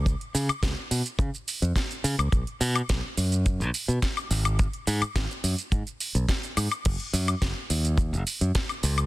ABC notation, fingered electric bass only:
X:1
M:4/4
L:1/16
Q:1/4=106
K:G#dor
V:1 name="Fingered electric bass" clef=bass
C,, z C, z C,, z B,, z C, z2 E,, z2 C, C,, | B,,, z B,, z B,,, z F,,3 B,,, z B,, z2 G,,,2- | G,,, z G,, z G,,, z F,, z G,, z2 B,,, z2 G,, z | F,,, z F,, z F,,, z D,,3 F,,, z F,, z2 C,,2 |]